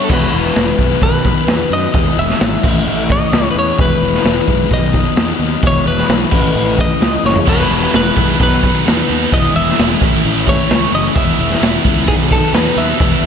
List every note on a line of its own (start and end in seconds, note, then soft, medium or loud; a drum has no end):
0.04 0.11 A4 medium
0.08 0.25 E1 medium
0.08 0.55 E3 medium
0.08 0.33 G#3 loud
0.08 0.32 B3 loud
0.08 0.32 E4 loud
0.08 kick loud
0.08 crash loud
0.13 1.02 B4 loud
0.33 0.49 E1 medium
0.33 0.56 G#3 medium
0.33 0.57 B3 medium
0.33 0.57 E4 medium
0.55 0.71 E1 medium
0.55 0.80 E3 medium
0.55 0.79 G#3 medium
0.55 0.79 B3 medium
0.55 0.78 E4 medium
0.55 snare loud
0.55 open hi-hat medium
0.78 0.94 B1 medium
0.78 1.02 E3 medium
0.78 1.01 G#3 medium
0.78 1.01 B3 medium
0.78 1.01 E4 medium
0.78 kick medium
1.01 1.32 B1 loud
1.01 1.26 B2 medium
1.01 1.26 D#3 loud
1.01 1.25 F#3 loud
1.01 1.25 B3 loud
1.01 1.73 B4 loud
1.01 kick medium
1.01 open hi-hat medium
1.06 1.24 D#4 loud
1.25 1.72 B2 medium
1.25 1.47 D#3 medium
1.25 1.48 F#3 medium
1.25 1.48 B3 medium
1.25 1.49 D#4 medium
1.25 kick medium
1.47 1.63 E2 medium
1.47 1.93 D#3 medium
1.47 1.74 F#3 medium
1.47 1.73 B3 medium
1.47 1.72 D#4 medium
1.47 snare loud
1.47 open hi-hat medium
1.70 1.86 F#2 medium
1.70 1.94 B3 medium
1.70 1.94 D#4 medium
1.70 2.19 D#5 loud
1.75 1.95 F#3 medium
1.93 2.09 E1 loud
1.93 2.40 E3 medium
1.93 2.20 G#3 medium
1.93 2.18 B3 loud
1.93 2.17 E4 loud
1.93 kick loud
1.93 open hi-hat medium
2.17 2.32 E1 loud
2.17 2.41 B3 medium
2.17 2.42 E4 medium
2.17 3.06 E5 loud
2.21 2.40 G#3 medium
2.29 snare soft
2.40 2.56 G#1 medium
2.40 2.62 E3 medium
2.40 2.62 G#3 medium
2.40 2.63 B3 medium
2.40 2.63 E4 loud
2.40 snare loud
2.40 open hi-hat medium
2.53 snare soft
2.63 2.78 A1 medium
2.63 3.11 A2 medium
2.63 2.86 E3 medium
2.63 2.88 A3 medium
2.63 2.88 C#4 medium
2.63 2.89 E4 loud
2.63 kick loud
2.63 crash loud
2.87 3.17 A1 loud
2.87 3.11 E3 medium
2.87 3.10 A3 medium
2.87 3.10 C#4 medium
2.87 3.09 E4 medium
3.10 3.57 A2 medium
3.10 3.32 E3 medium
3.10 3.33 A3 medium
3.10 3.34 C#4 medium
3.10 3.35 E4 medium
3.10 3.51 D#5 loud
3.10 kick medium
3.32 3.48 C#2 loud
3.32 3.77 E3 medium
3.32 3.58 A3 medium
3.32 3.57 C#4 medium
3.32 3.56 E4 medium
3.32 snare loud
3.32 open hi-hat medium
3.51 3.70 E2 medium
3.51 3.56 B4 medium
3.57 3.79 A3 medium
3.57 3.78 C#4 medium
3.57 3.78 E4 medium
3.57 3.80 C#5 loud
3.78 3.93 E1 loud
3.78 4.24 E3 medium
3.78 4.04 G#3 loud
3.78 4.03 B3 loud
3.78 4.01 E4 loud
3.78 4.73 B4 loud
3.78 kick loud
3.78 open hi-hat medium
4.01 4.16 E1 medium
4.01 4.26 B3 medium
4.01 4.26 E4 medium
4.05 4.25 G#3 medium
4.14 snare soft
4.25 4.40 E1 medium
4.25 4.49 E3 medium
4.25 4.49 G#3 medium
4.25 4.48 B3 medium
4.25 4.46 E4 medium
4.25 snare loud
4.25 open hi-hat medium
4.37 snare soft
4.48 4.63 B1 medium
4.48 4.70 E3 medium
4.48 4.70 G#3 medium
4.48 4.70 B3 medium
4.48 4.69 E4 medium
4.48 kick medium
4.71 5.01 B1 loud
4.71 4.96 B2 loud
4.71 4.95 D#3 loud
4.71 4.94 F#3 loud
4.71 4.95 B3 loud
4.71 4.93 D#4 loud
4.71 5.60 D#5 medium
4.71 kick medium
4.71 open hi-hat medium
4.94 5.41 B2 medium
4.94 5.16 D#3 medium
4.94 5.17 F#3 medium
4.94 5.18 B3 medium
4.94 5.18 D#4 loud
4.94 kick medium
5.16 5.31 E2 loud
5.16 5.62 D#3 medium
5.16 5.41 F#3 medium
5.16 5.40 B3 medium
5.16 5.38 D#4 medium
5.16 snare loud
5.16 open hi-hat medium
5.39 5.54 D#2 medium
5.39 5.62 F#3 medium
5.39 5.62 B3 medium
5.39 5.61 D#4 medium
5.62 5.78 E1 medium
5.62 6.07 E3 medium
5.62 5.87 G#3 medium
5.62 5.86 B3 loud
5.62 5.84 E4 loud
5.62 kick loud
5.62 open hi-hat medium
5.67 5.86 C#5 loud
5.86 6.01 E1 medium
5.86 6.08 G#3 medium
5.86 6.08 B3 medium
5.86 6.09 E4 medium
5.86 6.80 B4 loud
5.98 snare soft
6.08 6.24 B1 medium
6.08 6.30 E3 medium
6.08 6.31 G#3 medium
6.08 6.31 B3 medium
6.08 6.30 E4 medium
6.08 snare loud
6.08 open hi-hat medium
6.21 snare soft
6.31 6.47 A1 medium
6.31 6.78 A2 medium
6.31 6.53 E3 medium
6.31 6.55 A3 medium
6.31 6.55 C#4 medium
6.31 6.56 E4 medium
6.31 kick loud
6.31 crash loud
6.55 6.85 A1 medium
6.55 6.78 E3 medium
6.55 6.78 A3 medium
6.55 6.77 C#4 medium
6.55 6.76 E4 medium
6.77 7.25 A2 medium
6.77 6.99 E3 medium
6.77 7.00 A3 medium
6.77 7.01 C#4 medium
6.77 7.01 E4 medium
6.77 7.22 D#5 loud
6.77 kick medium
7.00 7.16 C#2 medium
7.00 7.44 E3 medium
7.00 7.24 A3 medium
7.00 7.23 C#4 medium
7.00 7.22 E4 medium
7.00 snare loud
7.00 open hi-hat medium
7.23 7.39 F#1 medium
7.23 7.46 A3 medium
7.23 7.46 C#4 medium
7.23 7.45 E4 medium
7.23 7.47 C#5 medium
7.23 snare medium
7.36 floor tom medium
7.46 7.62 E1 medium
7.46 7.93 E3 medium
7.46 7.71 G#3 loud
7.46 7.70 B3 medium
7.46 7.69 E4 loud
7.46 7.95 B4 loud
7.46 kick loud
7.46 crash loud
7.70 7.86 E1 medium
7.70 7.93 G#3 medium
7.70 7.94 B3 medium
7.70 7.95 E4 medium
7.93 8.09 E1 medium
7.93 8.17 E3 medium
7.93 8.16 G#3 medium
7.93 8.15 B3 medium
7.93 8.14 E4 medium
7.93 8.38 B4 medium
7.93 snare loud
7.93 open hi-hat medium
8.16 8.32 B1 medium
8.16 8.38 E3 medium
8.16 8.38 G#3 medium
8.16 8.38 B3 medium
8.16 8.38 E4 loud
8.16 kick medium
8.38 8.70 B1 loud
8.38 8.62 B2 loud
8.38 8.61 D#3 loud
8.38 8.61 F#3 loud
8.38 8.60 B3 loud
8.38 8.60 D#4 loud
8.38 kick medium
8.38 open hi-hat medium
8.43 9.30 B4 medium
8.61 9.09 B2 medium
8.61 8.83 D#3 medium
8.61 8.84 F#3 medium
8.61 8.85 B3 medium
8.61 8.86 D#4 medium
8.61 kick medium
8.84 9.01 E2 loud
8.84 9.30 D#3 medium
8.84 9.09 F#3 medium
8.84 9.08 B3 medium
8.84 9.07 D#4 medium
8.84 snare loud
8.84 open hi-hat medium
9.08 9.24 D#2 medium
9.08 9.31 F#3 medium
9.08 9.31 B3 medium
9.08 9.30 D#4 medium
9.31 9.47 E1 loud
9.31 9.76 E3 loud
9.31 9.56 G#3 medium
9.31 9.54 B3 loud
9.31 9.54 E4 loud
9.31 9.56 D#5 medium
9.31 kick loud
9.31 open hi-hat medium
9.54 9.70 E1 medium
9.54 9.77 G#3 medium
9.54 9.78 B3 medium
9.54 9.78 E4 medium
9.54 10.44 E5 loud
9.69 snare soft
9.77 9.94 E1 loud
9.77 9.99 E3 medium
9.77 10.00 G#3 medium
9.77 10.00 B3 medium
9.77 9.98 E4 medium
9.77 snare loud
9.77 open hi-hat medium
9.92 snare soft
10.00 10.16 A1 loud
10.00 10.48 A2 medium
10.00 10.23 E3 medium
10.00 10.23 A3 medium
10.00 10.24 C#4 medium
10.00 10.25 E4 medium
10.00 kick loud
10.24 10.54 A1 medium
10.24 10.47 E3 medium
10.24 10.46 A3 medium
10.24 10.46 C#4 medium
10.24 10.46 E4 medium
10.24 open hi-hat medium
10.47 10.94 A2 medium
10.47 10.68 E3 medium
10.47 10.69 A3 medium
10.47 10.70 C#4 medium
10.47 10.70 E4 loud
10.47 10.91 C#5 loud
10.47 kick medium
10.69 10.86 C#2 loud
10.69 11.13 E3 medium
10.69 10.92 A3 medium
10.69 10.91 C#4 medium
10.69 10.90 E4 medium
10.69 snare loud
10.69 open hi-hat medium
10.91 11.08 F#1 medium
10.91 11.15 A3 medium
10.91 11.14 C#4 medium
10.91 11.14 E4 medium
10.91 11.15 D#5 medium
11.15 11.31 E1 medium
11.15 11.60 E3 medium
11.15 11.40 G#3 loud
11.15 11.39 B3 loud
11.15 11.38 E4 loud
11.15 12.04 E5 loud
11.15 kick loud
11.15 open hi-hat medium
11.38 11.54 E1 medium
11.38 11.61 G#3 medium
11.38 11.61 B3 medium
11.38 11.62 E4 medium
11.51 snare soft
11.61 11.77 E1 medium
11.61 11.85 E3 medium
11.61 11.85 G#3 medium
11.61 11.84 B3 medium
11.61 11.83 E4 medium
11.61 snare loud
11.61 open hi-hat medium
11.84 12.08 C#2 medium
11.84 12.07 E3 medium
11.84 12.07 G#3 medium
11.84 12.07 B3 loud
11.84 12.06 E4 medium
11.84 kick medium
12.06 12.38 B1 loud
12.06 12.31 B2 loud
12.06 12.30 D#3 loud
12.06 12.30 F#3 loud
12.06 12.29 B3 loud
12.06 12.29 D#4 loud
12.06 12.14 G#4 medium
12.06 kick medium
12.06 open hi-hat medium
12.30 12.78 B2 medium
12.30 12.52 D#3 medium
12.30 12.53 F#3 medium
12.30 12.54 B3 loud
12.30 12.54 D#4 loud
12.30 12.53 A4 medium
12.30 kick medium
12.53 12.68 E2 loud
12.53 12.98 D#3 medium
12.53 12.79 F#3 medium
12.53 12.78 B3 medium
12.53 12.77 D#4 medium
12.53 12.78 B4 medium
12.53 snare loud
12.53 open hi-hat medium
12.76 12.92 D#2 medium
12.76 13.00 F#3 medium
12.76 13.00 B3 medium
12.76 12.99 D#4 medium
12.76 13.26 E5 medium
12.99 13.15 E1 medium
12.99 13.26 E3 loud
12.99 13.23 G#3 medium
12.99 13.23 B3 loud
12.99 13.21 E4 loud
12.99 kick loud
12.99 open hi-hat medium
13.22 13.26 E1 loud
13.22 13.26 E4 medium